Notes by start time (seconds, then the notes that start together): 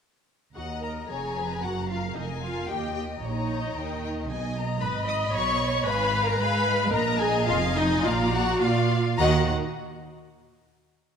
0.55 D#2 F#4 D#5 F#5 A#5
0.82 A#4 A#5
1.08 F1 F2 G#4 C#5 G#5
1.38 B4
1.63 F#1 F#2 F#4 A#4 F#5
1.90 F4 F5
2.16 F1 F2 D#4 A#4 D#5 G#5
2.43 F4 F5
2.68 D#2 G4 D#5 G5
2.94 G4 G5
3.21 A#1 A#2 D#4 C#5 D#5 A#5
3.75 D#2 D#3 A#4 G5
4.03 G5
4.28 B1 B2 D#5 G#5
4.56 A#5
4.81 G#1 G#2 B4 D#5 B5
5.07 D#5 D#6
5.33 B1 B2 C#5 C#6
5.86 G#1 G#2 B4 F5 G#5 B5
6.25 A#4 A#5
6.38 G#2 G#3 B4 F5 G#5 B5
6.66 F5
6.92 A#1 A#2 A#4 D#5 A#5
7.20 G#4 G#5
7.47 F1 F2 F4 F5 G#5
7.76 D#4 D#5
8.03 A#1 A#2 F4 D5 F5 A#5
8.32 F#4 F#5
8.61 A#2 A#3 F4 D5 F5
9.19 D#2 D#3 F#4 D#5 F#5 A#5